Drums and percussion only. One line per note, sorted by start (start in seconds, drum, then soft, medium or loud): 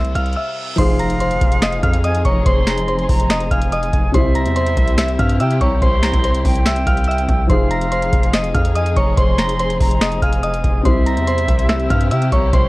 0.05 closed hi-hat medium
0.15 closed hi-hat medium
0.26 closed hi-hat soft
0.33 closed hi-hat soft
0.78 kick loud
0.78 closed hi-hat medium
0.78 crash loud
0.99 closed hi-hat medium
1.10 closed hi-hat medium
1.20 closed hi-hat medium
1.31 closed hi-hat medium
1.41 kick loud
1.41 closed hi-hat medium
1.52 closed hi-hat medium
1.62 finger snap loud
1.62 snare loud
1.62 closed hi-hat medium
1.73 closed hi-hat medium
1.83 kick medium
1.83 closed hi-hat medium
1.94 closed hi-hat medium
2.04 closed hi-hat medium
2.15 closed hi-hat medium
2.25 kick medium
2.25 closed hi-hat medium
2.46 kick loud
2.46 closed hi-hat medium
2.67 finger snap medium
2.67 snare loud
2.67 closed hi-hat medium
2.78 closed hi-hat medium
2.88 closed hi-hat medium
2.99 closed hi-hat medium
3.09 kick loud
3.09 open hi-hat medium
3.20 closed hi-hat medium
3.30 finger snap loud
3.30 snare loud
3.30 closed hi-hat medium
3.40 closed hi-hat medium
3.51 kick medium
3.51 closed hi-hat medium
3.61 closed hi-hat medium
3.72 closed hi-hat medium
3.83 closed hi-hat medium
3.93 kick medium
3.93 closed hi-hat medium
4.14 kick loud
4.14 closed hi-hat medium
4.35 closed hi-hat medium
4.46 closed hi-hat medium
4.56 closed hi-hat medium
4.67 closed hi-hat medium
4.77 kick loud
4.77 closed hi-hat medium
4.88 closed hi-hat medium
4.98 finger snap loud
4.98 snare loud
4.98 closed hi-hat medium
5.08 closed hi-hat medium
5.19 kick medium
5.19 closed hi-hat medium
5.29 closed hi-hat medium
5.40 closed hi-hat medium
5.50 closed hi-hat medium
5.61 kick medium
5.61 closed hi-hat medium
5.82 kick loud
5.82 closed hi-hat medium
6.03 finger snap medium
6.03 snare loud
6.03 closed hi-hat medium
6.13 kick medium
6.13 closed hi-hat medium
6.24 closed hi-hat medium
6.34 closed hi-hat medium
6.45 kick loud
6.45 open hi-hat medium
6.55 closed hi-hat medium
6.66 finger snap loud
6.66 snare loud
6.66 closed hi-hat medium
6.76 closed hi-hat medium
6.87 kick medium
6.87 closed hi-hat medium
6.97 closed hi-hat soft
7.04 closed hi-hat medium
7.11 closed hi-hat medium
7.18 closed hi-hat medium
7.29 kick medium
7.29 closed hi-hat medium
7.50 kick loud
7.50 closed hi-hat medium
7.71 closed hi-hat medium
7.81 closed hi-hat medium
7.92 closed hi-hat medium
8.02 closed hi-hat medium
8.13 kick loud
8.13 closed hi-hat medium
8.23 closed hi-hat medium
8.33 finger snap loud
8.33 snare loud
8.33 closed hi-hat medium
8.44 closed hi-hat medium
8.54 kick medium
8.54 closed hi-hat medium
8.65 closed hi-hat medium
8.75 closed hi-hat medium
8.86 closed hi-hat medium
8.96 kick medium
8.96 closed hi-hat medium
9.17 kick loud
9.17 closed hi-hat medium
9.38 finger snap medium
9.38 snare loud
9.38 closed hi-hat medium
9.49 closed hi-hat medium
9.59 closed hi-hat medium
9.70 closed hi-hat medium
9.80 kick loud
9.80 open hi-hat medium
9.91 closed hi-hat medium
10.01 finger snap loud
10.01 snare loud
10.01 closed hi-hat medium
10.12 closed hi-hat medium
10.22 kick medium
10.22 closed hi-hat medium
10.33 closed hi-hat medium
10.43 closed hi-hat medium
10.54 closed hi-hat medium
10.64 kick medium
10.64 closed hi-hat medium
10.85 kick loud
10.85 closed hi-hat medium
11.06 closed hi-hat medium
11.17 closed hi-hat medium
11.27 closed hi-hat medium
11.38 closed hi-hat medium
11.48 kick loud
11.48 closed hi-hat medium
11.59 closed hi-hat medium
11.69 finger snap loud
11.69 snare loud
11.69 closed hi-hat medium
11.80 closed hi-hat medium
11.90 kick medium
11.90 closed hi-hat medium
12.01 closed hi-hat medium
12.11 closed hi-hat medium
12.22 closed hi-hat medium
12.32 kick medium
12.32 closed hi-hat medium
12.53 kick loud
12.53 closed hi-hat medium